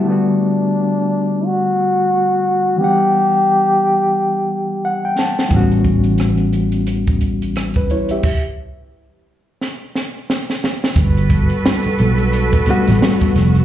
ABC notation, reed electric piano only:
X:1
M:4/4
L:1/16
Q:"Swing 16ths" 1/4=88
K:Glyd
V:1 name="Reed electric piano"
G z12 z3 | z12 f g a2 | z12 z B [Ec] [Ge]- | [Ge] z12 z3 |
z16 |]
V:2 name="Reed electric piano"
[D,G,A,B,F]16 | [E,G,B,Df]16 | [E,G,B,CF]16 | z16 |
z8 z2 [G,A,B,DF]2 z4 |]